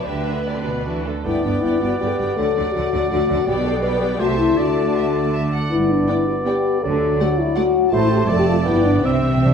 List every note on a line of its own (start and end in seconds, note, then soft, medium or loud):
0.05 1.05 D2 soft
0.05 0.43 D3 soft
0.05 0.26 D4 soft
0.05 0.26 G4 soft
0.05 1.06 B4 soft
0.05 0.46 E5 soft
0.27 0.47 B3 soft
0.27 0.47 B4 soft
0.46 0.56 D3 soft
0.46 0.67 D4 soft
0.46 0.67 G4 soft
0.46 1.07 D5 soft
0.58 0.67 C3 soft
0.66 0.87 B2 soft
0.66 0.86 B3 soft
0.66 0.87 B4 soft
0.86 1.07 E3 soft
0.86 1.05 D4 soft
0.86 1.05 F#4 soft
1.07 1.26 D3 soft
1.07 1.26 A3 soft
1.07 1.26 A4 soft
1.24 1.34 G1 soft
1.24 1.34 G2 soft
1.24 2.40 B3 soft
1.24 1.44 B3 soft
1.24 1.43 E4 soft
1.24 3.43 D5 soft
1.24 1.44 D5 soft
1.24 1.44 G5 soft
1.43 1.53 G1 soft
1.43 1.52 G2 soft
1.43 1.62 B3 soft
1.43 1.63 D4 soft
1.43 1.63 D5 soft
1.43 1.62 G5 soft
1.61 1.71 G1 soft
1.61 1.71 G2 soft
1.61 1.81 B3 soft
1.61 1.81 E4 medium
1.61 1.80 D5 soft
1.61 1.81 G5 soft
1.81 1.90 G1 soft
1.81 1.90 G2 soft
1.81 2.00 B3 soft
1.81 2.01 F#4 soft
1.81 1.99 D5 soft
1.81 1.99 G5 soft
1.99 2.09 G1 soft
1.99 2.09 G2 soft
1.99 2.19 B3 soft
1.99 2.07 G4 medium
1.99 2.18 D5 soft
1.99 2.19 G5 soft
2.06 2.14 A4 soft
2.12 2.37 G4 medium
2.20 2.28 G1 soft
2.20 2.27 G2 soft
2.20 2.38 B3 soft
2.20 2.37 D5 soft
2.20 2.39 G5 soft
2.36 2.46 D2 soft
2.36 2.46 D3 soft
2.36 3.48 F#3 soft
2.36 2.55 A3 soft
2.36 2.74 A4 medium
2.36 2.55 D5 soft
2.36 2.57 F#5 soft
2.56 2.65 D2 soft
2.56 2.65 D3 soft
2.56 2.74 A3 soft
2.56 2.75 D5 soft
2.56 2.75 F#5 soft
2.73 2.83 D2 soft
2.73 2.83 D3 soft
2.73 2.92 A3 soft
2.73 3.10 F#4 medium
2.73 2.92 D5 soft
2.73 2.93 F#5 soft
2.93 3.01 D2 soft
2.93 3.01 D3 soft
2.93 3.09 A3 soft
2.93 3.11 D5 soft
2.93 3.11 F#5 soft
3.10 3.20 D2 medium
3.10 3.19 D3 soft
3.10 3.28 A3 soft
3.10 3.47 F#4 medium
3.10 3.29 D5 soft
3.10 3.30 F#5 soft
3.29 3.38 D2 medium
3.29 3.37 D3 soft
3.29 3.47 A3 soft
3.29 3.47 D5 soft
3.29 3.48 F#5 soft
3.46 4.17 B1 medium
3.46 4.17 B2 medium
3.46 4.21 G3 soft
3.46 3.81 B3 soft
3.46 3.55 G4 medium
3.46 4.21 D5 soft
3.46 3.81 D5 medium
3.46 3.83 G5 medium
3.64 3.73 A4 medium
3.83 4.19 B3 medium
3.83 4.01 B4 medium
3.83 4.20 D5 soft
3.83 4.21 G5 soft
4.01 4.20 G4 medium
4.19 4.58 C2 medium
4.19 4.58 C3 soft
4.19 4.55 A3 soft
4.19 5.53 A3 soft
4.19 4.28 F#4 medium
4.19 4.59 C5 soft
4.19 4.58 E5 soft
4.19 4.58 A5 soft
4.38 4.57 E4 medium
4.56 5.52 D2 soft
4.56 5.51 D3 soft
4.56 5.50 A3 soft
4.56 5.34 F#4 medium
4.56 6.83 D5 soft
4.56 4.93 D5 soft
4.56 5.52 A5 soft
4.97 5.05 E5 soft
5.17 5.35 D5 soft
5.34 5.42 E5 soft
5.53 5.71 F#5 soft
5.71 6.03 G1 soft
5.71 6.03 G2 soft
5.71 6.85 B3 soft
5.71 5.89 E4 medium
5.91 6.09 D4 soft
6.08 6.16 B3 soft
6.08 6.28 E4 medium
6.08 6.17 D5 soft
6.08 6.16 G5 soft
6.28 6.36 F#4 medium
6.45 6.53 B3 soft
6.45 6.82 G4 medium
6.45 6.55 D5 soft
6.45 6.55 G5 soft
6.82 7.15 D2 medium
6.82 7.15 D3 medium
6.82 7.92 F#3 soft
6.82 7.19 A4 medium
6.82 7.64 D5 soft
7.20 7.28 A3 medium
7.20 7.39 F#4 medium
7.20 7.28 D5 soft
7.20 7.29 F#5 soft
7.39 7.56 E4 medium
7.56 7.65 A3 soft
7.56 7.92 F#4 medium
7.56 7.64 D5 medium
7.56 7.64 F#5 medium
7.91 8.26 A1 medium
7.91 8.26 A2 medium
7.91 8.67 A3 medium
7.91 8.26 A3 medium
7.91 8.10 E4 medium
7.91 8.30 C5 soft
7.91 8.27 C5 medium
7.91 8.25 A5 medium
8.11 8.19 G4 medium
8.28 8.66 F1 medium
8.28 8.66 F2 medium
8.28 8.65 A3 medium
8.28 8.34 A4 medium
8.28 9.07 D5 medium
8.28 8.65 D5 medium
8.28 8.65 A5 medium
8.38 8.42 G4 medium
8.47 8.56 F4 medium
8.65 9.05 G1 medium
8.65 9.05 G2 medium
8.65 9.06 B3 soft
8.65 9.05 B3 soft
8.65 8.85 E4 medium
8.65 9.04 D5 medium
8.65 9.02 G5 medium
8.85 9.05 D4 medium
9.03 9.54 C2 soft
9.03 9.54 C3 soft
9.03 9.12 C3 soft
9.03 9.54 C4 medium
9.03 9.41 C4 soft
9.03 9.54 C4 soft
9.03 9.54 E5 soft
9.03 9.54 G5 soft
9.14 9.20 C3 soft
9.22 9.29 C3 soft
9.30 9.36 C3 soft
9.37 9.45 C3 soft
9.45 9.53 C3 soft
9.45 9.54 D4 soft